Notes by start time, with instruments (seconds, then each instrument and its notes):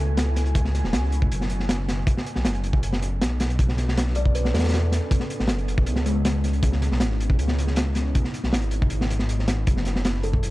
Already playing: detuned saw bass C#2, ambient pad A3 E4 F#4 G#5
0.17 snare, closed hi-hat
0.36 snare, closed hi-hat
0.46 closed hi-hat
0.55 kick, closed hi-hat
0.65 snare
0.74 snare, closed hi-hat
0.84 detuned saw bass E1, snare
0.93 detuned saw bass C#2, snare, closed hi-hat
1.03 snare
1.12 closed hi-hat
1.22 kick
1.31 detuned saw bass F#1, closed hi-hat
1.41 snare
1.50 closed hi-hat
1.60 snare
1.69 snare, closed hi-hat
1.88 snare, closed hi-hat
2.07 ambient pad B3 C#4 D4 A4, kick, closed hi-hat
2.17 snare
2.26 closed hi-hat
2.36 detuned saw bass B1, snare
2.45 detuned saw bass F#1, snare, closed hi-hat
2.54 closed hi-hat
2.64 closed hi-hat
2.73 kick
2.83 closed hi-hat
2.93 snare
3.02 closed hi-hat
3.21 detuned saw bass B1, snare, closed hi-hat
3.40 snare, closed hi-hat
3.50 closed hi-hat
3.59 detuned saw bass B1, ambient pad G#4, kick, closed hi-hat
3.69 snare
3.78 snare, closed hi-hat
3.88 snare
3.97 snare, closed hi-hat
4.07 snare
4.15 kalimba D5, closed hi-hat
4.25 kick
4.35 kalimba B4, closed hi-hat
4.45 kalimba B4, snare
4.54 detuned saw bass E2, kalimba A4, snare, closed hi-hat
4.59 snare, closed hi-hat
4.64 kalimba A4, snare, closed hi-hat
4.69 snare, closed hi-hat
4.74 snare, closed hi-hat
4.92 snare, closed hi-hat
5.11 kick, closed hi-hat
5.20 snare
5.30 closed hi-hat
5.40 detuned saw bass A1, snare
5.48 detuned saw bass F#1, snare, closed hi-hat
5.58 closed hi-hat
5.68 closed hi-hat
5.78 kick
5.86 detuned saw bass C#2, ambient pad D#4 E4, closed hi-hat
5.96 snare
6.06 kalimba G#3, closed hi-hat
6.15 kalimba G#3
6.25 snare, closed hi-hat
6.44 snare, closed hi-hat
6.53 closed hi-hat
6.63 kick, closed hi-hat
6.72 snare
6.82 snare, closed hi-hat
6.91 detuned saw bass B1, snare
7.00 detuned saw bass G#1, snare, closed hi-hat
7.10 snare
7.20 closed hi-hat
7.30 kick
7.39 detuned saw bass C#2, closed hi-hat
7.48 snare
7.59 closed hi-hat
7.67 snare
7.76 snare, closed hi-hat
7.95 snare, closed hi-hat
8.15 kick, closed hi-hat
8.24 snare
8.34 closed hi-hat
8.43 detuned saw bass B1, snare
8.53 detuned saw bass G#1, snare, closed hi-hat
8.62 closed hi-hat
8.71 closed hi-hat
8.82 kick
8.90 closed hi-hat
9.01 snare
9.10 closed hi-hat
9.19 snare
9.29 closed hi-hat
9.39 snare
9.48 detuned saw bass G#1, snare, closed hi-hat
9.66 detuned saw bass F#1, ambient pad A3 F#4 G#4, kick, closed hi-hat
9.77 snare
9.85 snare, closed hi-hat
9.96 snare
10.05 snare, closed hi-hat
10.14 snare
10.23 kalimba A4, closed hi-hat
10.33 kick
10.43 closed hi-hat